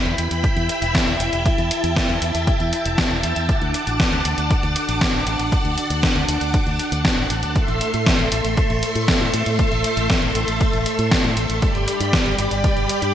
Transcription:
Already playing: E4 E5 G5 B5
0.05 E2, closed hi-hat
0.18 E2, closed hi-hat
0.31 E2, closed hi-hat
0.44 kick, closed hi-hat
0.56 E2, closed hi-hat
0.69 closed hi-hat
0.82 E1, closed hi-hat
0.95 kick, snare, closed hi-hat
1.07 E1, closed hi-hat
1.20 E1, closed hi-hat
1.33 E1, closed hi-hat
1.45 A5, kick, closed hi-hat
1.58 E2, closed hi-hat
1.71 closed hi-hat
1.84 E2, closed hi-hat
1.96 kick, snare, closed hi-hat
2.09 E2, closed hi-hat
2.22 E2, closed hi-hat
2.35 E2, closed hi-hat
2.47 kick, closed hi-hat
2.60 E2, closed hi-hat
2.73 closed hi-hat
2.85 E1, closed hi-hat
2.98 kick, snare, closed hi-hat
3.11 E1, closed hi-hat
3.23 E2, closed hi-hat
3.36 E2, closed hi-hat
3.49 D4 D5 F#5, kick, closed hi-hat
3.62 D2, closed hi-hat
3.74 closed hi-hat
3.87 A1, closed hi-hat
4.00 kick, snare, closed hi-hat
4.12 D2, closed hi-hat
4.25 D2, closed hi-hat
4.38 D2, closed hi-hat
4.51 kick, closed hi-hat
4.63 D2, closed hi-hat
4.76 closed hi-hat
4.89 A1, closed hi-hat
5.01 kick, snare, closed hi-hat
5.14 A1, closed hi-hat
5.27 A1, closed hi-hat
5.39 A1, closed hi-hat
5.52 kick, closed hi-hat
5.65 D2, closed hi-hat
5.78 closed hi-hat
5.90 D2, closed hi-hat
6.03 kick, snare, closed hi-hat
6.16 D2, closed hi-hat
6.28 D2, closed hi-hat
6.41 D2, closed hi-hat
6.54 kick, closed hi-hat
6.66 D2, closed hi-hat
6.79 closed hi-hat
6.92 D2, closed hi-hat
7.05 kick, snare, closed hi-hat
7.17 A1, closed hi-hat
7.30 A1, closed hi-hat
7.43 D2, closed hi-hat
7.56 A3 A4 E5 C6, kick, closed hi-hat
7.68 A1, closed hi-hat
7.81 closed hi-hat
7.94 A2, closed hi-hat
8.06 kick, snare, closed hi-hat
8.19 A1, closed hi-hat
8.32 A1, closed hi-hat
8.45 A1, closed hi-hat
8.57 kick, closed hi-hat
8.70 A1, closed hi-hat
8.83 closed hi-hat
8.95 A2, closed hi-hat
9.08 kick, snare, closed hi-hat
9.21 A2, closed hi-hat
9.34 A2, closed hi-hat
9.46 A2, closed hi-hat
9.59 kick, closed hi-hat
9.72 A1, closed hi-hat
9.84 closed hi-hat
9.97 A1, closed hi-hat
10.10 kick, snare, closed hi-hat
10.22 A1, closed hi-hat
10.35 A1, closed hi-hat
10.48 A1, closed hi-hat
10.61 kick, closed hi-hat
10.73 A1, closed hi-hat
10.86 closed hi-hat
10.99 A2, closed hi-hat
11.11 kick, snare, closed hi-hat
11.24 A2, closed hi-hat
11.37 A1, closed hi-hat
11.50 A1, closed hi-hat
11.62 G3 G4 D5 B5, kick, closed hi-hat
11.75 G1, closed hi-hat
11.88 closed hi-hat
12.00 G2, closed hi-hat
12.13 kick, snare, closed hi-hat
12.26 G1, closed hi-hat
12.38 G1, closed hi-hat
12.51 G1, closed hi-hat
12.64 kick, closed hi-hat
12.77 G1, closed hi-hat
12.89 closed hi-hat
13.02 G2, closed hi-hat

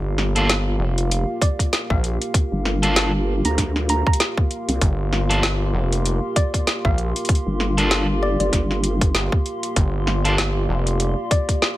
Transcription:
Already playing: G1 A#3 F4 G4 A#4 F5 A#5
0.18 snare
0.36 A#3 D4 F4 A4 C6, closed hi-hat
0.50 snare, closed hi-hat
0.79 F1
0.98 closed hi-hat
1.11 closed hi-hat
1.42 D5, kick, closed hi-hat
1.59 kick, closed hi-hat
1.73 snare, closed hi-hat
1.90 A#1 F5, kick
2.04 closed hi-hat
2.22 closed hi-hat
2.34 kick, closed hi-hat
2.52 G1
2.65 snare
2.83 A#3 D4 F4 A4, closed hi-hat
2.96 snare, closed hi-hat
3.45 D2 A#5, closed hi-hat
3.58 kick, snare, closed hi-hat
3.76 snare
3.89 A#5, closed hi-hat
4.07 A#5, kick
4.13 closed hi-hat
4.20 snare, closed hi-hat
4.37 kick
4.51 closed hi-hat
4.68 C2, closed hi-hat
4.81 G1, kick, closed hi-hat
5.13 snare
5.30 A#3 D4 F4 A4, closed hi-hat
5.43 snare, closed hi-hat
5.74 F1
5.92 closed hi-hat
6.06 closed hi-hat
6.36 D5, kick, closed hi-hat
6.54 kick, closed hi-hat
6.67 snare, closed hi-hat
6.85 A#1 F5, kick
6.98 closed hi-hat
7.16 closed hi-hat
7.25 closed hi-hat
7.29 kick, closed hi-hat
7.35 closed hi-hat
7.46 G1
7.60 snare
7.78 A#3 D4 F4 A4, closed hi-hat
7.91 snare, closed hi-hat
8.23 D5
8.39 G1 D5, closed hi-hat
8.52 G1, kick, snare, closed hi-hat
8.71 snare
8.84 closed hi-hat
9.01 kick, closed hi-hat
9.15 G1, snare, closed hi-hat
9.32 kick
9.46 closed hi-hat
9.63 closed hi-hat
9.76 G1 D5, kick, closed hi-hat
10.07 snare
10.25 A#3 D4 F4 A4, closed hi-hat
10.38 snare, closed hi-hat
10.69 F1
10.87 closed hi-hat
11.00 closed hi-hat
11.31 D5, kick, closed hi-hat
11.49 kick, closed hi-hat
11.62 snare

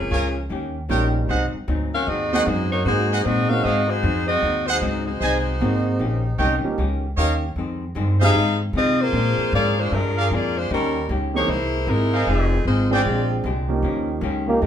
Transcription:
Already playing: F3 A#3 C#4 G#4
0.09 C#2 A#2 F3 G#3 C#4 A#4 C#5 F5 G#5
0.49 D#2 D#3 A#3 C#4 G4
0.89 A#1 D#3 G3 A#3 C#4 D#4 F4 G4 A#4 C#5 D#5 G5
1.28 C2 G#2 F#3 C4 D#4 G#4 C5 D#5 F#5
1.54 muted upright bass stroke
1.68 D2 G#2 F#3 C4 D#4
1.94 C#4 F#4 A#4 F5
2.07 D#2 G#2 F#3 C4 D#4 F#4 G#4 D#5
2.32 G#3 A#3 C4 D#4 F#4 G#4 C5 D#5 F#5
2.46 F#2 G#2 F#3 G#3 C4 D#4 F#4 C5
2.71 A#3 D#4 F#4 C#5
2.84 G#2 F#3 G#3 A#3 C4 D#4 F#4 C5
3.11 G#4 C5 D#5 F#5
3.23 G#2 A#2 F#3 C4 D#4 F#4 G#4 D#5
3.49 G#3 A#3 C4 C#4 D#4 F#4 A#4 F5
3.63 G#2 F#3 C4 D#4 F#4 G#4 C5 D#5 F5
3.88 G#3 D#4 F#4 C5
4.02 F2 G#2 F#3 C4 D#4
4.27 C4 F#4 G#4 D#5
4.41 D#2 G#2 F#3 C4 D#4
4.66 G#3 D#4 F#4 G#4 C5 D#5 F#5
4.81 C#2 G#2 F#3 C4 D#4
5.06 G#3 D#4 F#4 C5
5.21 C2 G#2 F#3 C4 D#4 G#4 C5 D#5 G#5
5.60 G#1 G#2 F#3 G#3 A#3 C4 D#4 F#4
5.99 A#1 D#3 A#3 C#4 G4
6.38 C2 D#3 A#3 C#4 G4 A#4 C#5 D#5 G5
6.64 F3 A#3 C#4 D#4 G4, muted upright bass stroke
6.78 C#2 D#3 A#3 C#4 G4
7.17 D#2 D#3 A#3 C#4 G4 A#4 C#5 D#5 F5
7.56 F2 D#3 G#3 C4
7.95 F2 G2 D#3 G#3 C4
8.20 F3 G#3 C4 D#4 G4 G#4 C5 D#5 F5
8.34 F2 G#2 D#3 G#3 C4
8.73 F2 C3 D#3 G#3 C4 F4 G#4 D#5
9.01 A#3 F4 G#4 C5
9.13 A#2 F3 G#3 A#3 C4 D4 G#4
9.38 muted upright bass stroke
9.52 G#2 A#2 F3 G#3 A#3 D4 F4 G#4 A#4 D5 F5
9.79 G#3 D4 F4 C5
9.91 G2 A#2 F3 G#3 D4 F4 G#4 A#4
10.17 G#4 A#4 D5 F5
10.30 F2 A#2 F3 G#3 A#3 D4 F4 G#4 D5
10.57 G#3 D4 F4 C5
10.70 D#2 D#3 G3 A#3 C#4 D#4 G4 A#4
11.09 C#2 D#3 A#3 C#4 G4
11.34 E3 A#3 C4 D#4 G4 G#4 C#5
11.46 C2 C3 G#3 A#3 E4 G#4 C5
11.87 G#1 C3 G#3 A#3 D#4 E4 A#4
12.14 G#4 C5 D#5 F5
12.27 F1 F2 D#3 F3 G#3 C4 D#4 G#4
12.65 G#1 F2 D#3 G#3 C4 D#4 F4 C5
12.90 F3 G#3 C4 D4 F4 G#4 C5 D5 G5
13.05 A#1 A#2 G#3 D4 G4
13.44 C2 A#2 G#3 D4 G4
13.69 F3 A#3 C#4 D#4 G4
13.82 D#2 D#3 A#3 C#4 G4
14.21 C#2 D#3 A#3 C#4 G4
14.48 F3 A#3 C#4 D#4 G4
14.62 F2 D#3 A#3 C#4 G4

